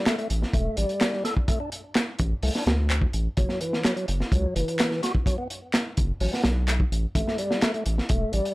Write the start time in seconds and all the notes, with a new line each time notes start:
0.06 A3, snare, clap, closed hi-hat
0.18 A3, closed hi-hat
0.30 A1, closed hi-hat
0.42 snare
0.53 E1 A3, kick, closed hi-hat
0.77 A1 G3, closed hi-hat
0.89 closed hi-hat
1.01 snare, clap, closed hi-hat
1.13 snare
1.25 A4, snare, closed hi-hat
1.37 kick
1.48 A3, kick, closed hi-hat
1.60 D4
1.72 closed hi-hat
1.95 snare, clap, closed hi-hat
2.19 A1, kick, closed hi-hat
2.43 C2 A3, open hi-hat
2.55 D4, snare
2.66 D2, snare, closed hi-hat
2.90 C4, clap, closed hi-hat
3.02 kick
3.13 A1, closed hi-hat
3.37 F#1 F#3, kick, closed hi-hat
3.49 snare
3.61 E3, closed hi-hat
3.73 snare
3.85 F#3, snare, clap, closed hi-hat
3.96 F#3, closed hi-hat
4.08 F#1, closed hi-hat
4.20 snare
4.32 C#2 F#3, kick, closed hi-hat
4.56 F#1 E3, closed hi-hat
4.68 closed hi-hat
4.79 snare, clap, closed hi-hat
4.91 snare
5.03 F#4, snare, closed hi-hat
5.15 kick
5.26 F#3, kick, closed hi-hat
5.38 B3
5.50 closed hi-hat
5.74 snare, clap, closed hi-hat
5.97 F#1, kick, closed hi-hat
6.20 A1 F#3, open hi-hat
6.33 B3, snare
6.44 B1, snare, closed hi-hat
6.68 A3, clap, closed hi-hat
6.80 kick
6.91 A1, closed hi-hat
7.15 A1 A3, kick, closed hi-hat
7.28 snare
7.38 G3, closed hi-hat
7.51 snare
7.62 A3, snare, clap, closed hi-hat
7.74 A3, closed hi-hat
7.86 A1, closed hi-hat
7.98 snare
8.09 E1 A3, kick, closed hi-hat
8.33 A1 G3, closed hi-hat
8.45 closed hi-hat